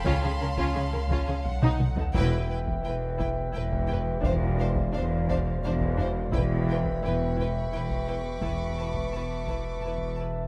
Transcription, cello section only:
X:1
M:3/4
L:1/16
Q:1/4=86
K:Dblyd
V:1 name="Cello section" clef=bass
D, D, D, D, D, D, D, D, z =B,, z B,, | [K:Ephr] E,,4 E,,4 E,,4 | E,,4 E,,4 E,,4 | E,,4 E,,4 E,,4 |
E,,4 E,,4 E,,4 |]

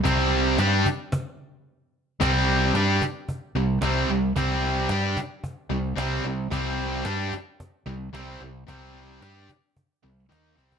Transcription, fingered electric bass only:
X:1
M:4/4
L:1/8
Q:1/4=111
K:Cm
V:1 name="Fingered electric bass" clef=bass
C,,2 G,, z4 z | C,,2 G,, z2 C,, C,, C,, | C,,2 G,, z2 C,, C,, C,, | C,,2 G,, z2 C,, C,, C,, |
C,,2 G,, z2 C,, E,, C,, |]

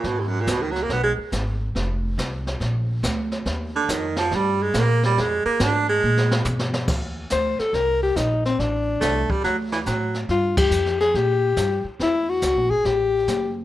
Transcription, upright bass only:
X:1
M:4/4
L:1/8
Q:"Swing" 1/4=140
K:Eb
V:1 name="Upright bass" clef=bass
A,,2 _D,,2 _C,, z A,,,2 | F,,,2 C,,2 B,,,2 D,,2 | E,,2 F,,2 G,,2 B,,2 | F,, z A,,2 B,,2 _C,2 |
E,,2 D,, z C,,2 B,,,2 | =A,,,2 C,, z D,,2 =A,,2 | G,,2 F,,2 B,,2 G,, z | _F,,2 (3_D,, B,,, A,,, =A,,,2 _G,,,2 |]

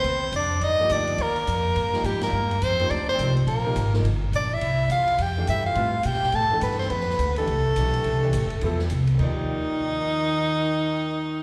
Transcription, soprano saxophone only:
X:1
M:4/4
L:1/8
Q:"Swing" 1/4=210
K:Eb
V:1 name="Soprano saxophone"
c2 d2 e2 d2 | B6 G B- | B2 c2 d c2 z | B4 z2 d _f- |
_f2 =f2 g2 =e f- | f2 g2 =a2 _c =c | _c3 =A4- A- | =A6 z2 |
E8- | E8 |]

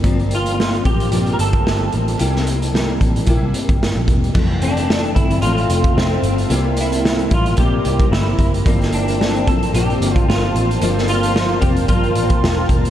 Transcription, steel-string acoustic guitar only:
X:1
M:4/4
L:1/8
Q:"Swing 16ths" 1/4=111
K:F
V:1 name="Steel-string acoustic guitar"
[G,,F,B,C]3 [F,B,C] [G,,F,B,C]4 | [C,G,B,E]2 [C,G,B,E]2 [C,G,B,E]4 | [F,,E,A,C]4 [F,,A,C]4 | [C,G,B,E]3 [G,B,E] [C,G,B,E]4 |
[G,,F,B,C]3 [F,B,C] [G,,F,B,C]4 | [G,,F,B,C]2 [G,,F,B,C] [F,B,C] [G,,F,B,C]4 |]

